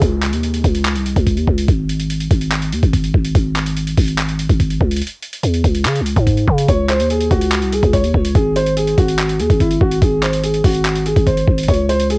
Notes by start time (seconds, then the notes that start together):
Already playing: downlifter
0.02 C#2, kick, closed hi-hat
0.22 clap, closed hi-hat
0.33 D#2, closed hi-hat
0.43 closed hi-hat
0.54 closed hi-hat
0.64 C#2, kick, closed hi-hat
0.75 closed hi-hat
0.85 clap, closed hi-hat
0.95 C2, closed hi-hat
1.06 closed hi-hat
1.16 C#2, kick, closed hi-hat
1.27 kick, closed hi-hat
1.37 D#2, closed hi-hat
1.48 C#2, kick
1.58 closed hi-hat
1.68 G#1, kick, closed hi-hat
1.89 closed hi-hat
2.00 closed hi-hat
2.10 closed hi-hat
2.20 closed hi-hat
2.31 G#1, kick, closed hi-hat
2.41 closed hi-hat
2.52 clap, closed hi-hat
2.62 closed hi-hat
2.73 D#2, closed hi-hat
2.83 G#1, kick, closed hi-hat
2.93 kick, closed hi-hat
3.04 closed hi-hat
3.14 G#1, kick
3.25 closed hi-hat
3.35 G#1, kick, closed hi-hat
3.56 clap, closed hi-hat
3.66 closed hi-hat
3.77 closed hi-hat
3.87 closed hi-hat
3.98 G#1, kick, closed hi-hat, open hi-hat
4.08 closed hi-hat
4.18 clap, closed hi-hat
4.29 closed hi-hat
4.39 closed hi-hat
4.50 G#1, kick, closed hi-hat
4.60 kick, closed hi-hat
4.70 closed hi-hat
4.81 C#2, kick
4.91 closed hi-hat
4.96 closed hi-hat
5.02 closed hi-hat
5.07 closed hi-hat
5.23 closed hi-hat
5.33 closed hi-hat
5.43 E2, closed hi-hat
5.54 closed hi-hat
5.64 C#2, kick, closed hi-hat
5.75 closed hi-hat
5.85 C#3, clap, closed hi-hat
5.95 closed hi-hat
6.01 C#2
6.06 closed hi-hat
6.16 G#2, kick, closed hi-hat
6.27 kick, closed hi-hat
6.37 closed hi-hat
6.48 C#3, kick
6.58 closed hi-hat
6.68 C#2 C#5, kick, closed hi-hat
6.89 C5, clap, closed hi-hat
7.00 D#2, closed hi-hat
7.10 G#4, closed hi-hat
7.20 closed hi-hat
7.31 C#2 F#4, kick, closed hi-hat
7.41 closed hi-hat
7.52 clap, closed hi-hat
7.62 C2, closed hi-hat
7.73 G#4, closed hi-hat
7.83 C#2, kick, closed hi-hat
7.93 C#5, kick, closed hi-hat
8.04 D#2, closed hi-hat
8.14 C#2, kick
8.25 closed hi-hat
8.35 G#1 G#4, kick, closed hi-hat
8.56 C5, closed hi-hat
8.66 closed hi-hat
8.77 G#4, closed hi-hat
8.87 closed hi-hat
8.98 G#1 F#4, kick, closed hi-hat
9.08 closed hi-hat
9.18 clap, closed hi-hat
9.29 closed hi-hat
9.39 D#2 G#4, closed hi-hat
9.50 G#1, kick, closed hi-hat
9.60 E4, kick, closed hi-hat
9.71 closed hi-hat
9.81 G#1 F#4, kick
9.91 closed hi-hat
10.02 G#1 G#4, kick, closed hi-hat
10.23 C5, clap, closed hi-hat
10.33 closed hi-hat
10.43 G#4, closed hi-hat
10.54 closed hi-hat
10.64 G#1 F#4, kick, closed hi-hat, open hi-hat
10.75 closed hi-hat
10.85 clap, closed hi-hat
10.95 closed hi-hat
11.06 G#4, closed hi-hat
11.16 G#1, kick, closed hi-hat
11.27 C5, kick, closed hi-hat
11.37 closed hi-hat
11.47 G#1, kick
11.58 closed hi-hat
11.63 closed hi-hat
11.68 C#2 C#5, kick, closed hi-hat
11.74 closed hi-hat
11.89 C5, closed hi-hat
12.00 closed hi-hat
12.10 G#4, closed hi-hat